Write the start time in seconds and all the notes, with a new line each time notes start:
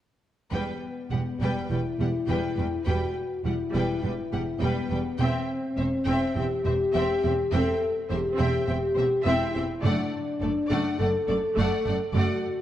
0.51 E1 E2 G3 B3 B4 G5
1.11 E1 E2 G3 G4 F#5
1.41 E1 E2 G3 B4 G5
1.70 E1 E2 G3 E4 B4 G5
1.99 E1 E2 G3 G4 F#5
2.28 E1 E2 G3 B4 G5
2.57 E1 E2 G3 B4 G5
2.86 E1 E2 G3 F#4 B4 G5
3.45 E1 E2 G3 E4 G4 F#5
3.73 E1 E2 G3 B4 G5
4.03 E1 E2 G3 E4 B4 G5
4.33 E1 E2 G3 G4 F#5
4.61 E1 E2 G3 B3 B4 G5
4.90 E1 E2 G3 B4 G5
5.19 E1 E2 C4 E5 G5
5.77 E1 E2 C4 C5 E5
6.06 E1 E2 C4 E5 G5
6.36 E1 E2 C4 G4 E5 G5
6.66 E1 E2 C4 C5 E5
6.94 E1 E2 C4 E5 G5
7.23 E1 E2 C4 E5 G5
7.53 E1 E2 C4 A4 E5 G5
8.09 E1 E2 C4 G4 C5 E5
8.37 E1 E2 C4 E5 G5
8.66 E1 E2 C4 G4 E5 G5
8.95 E1 E2 C4 C5 E5
9.24 E1 E2 C4 E4 E5
9.29 G5
9.54 E1 E2 C4 E4 E5 G5
9.82 F#1 F#2 A3 D4 D5 F#5
10.40 F#1 F#2 A3 A4 D5
10.69 F#1 F#2 A3 D5 F#5
10.99 F#1 F#2 A3 A4 D5 F#5
11.27 F#1 F#2 A3 A4 D5
11.57 F#1 F#2 A3 D5 F#5
11.85 F#1 F#2 A3 D5 F#5
12.14 F#1 F#2 A3 F#4 D5 F#5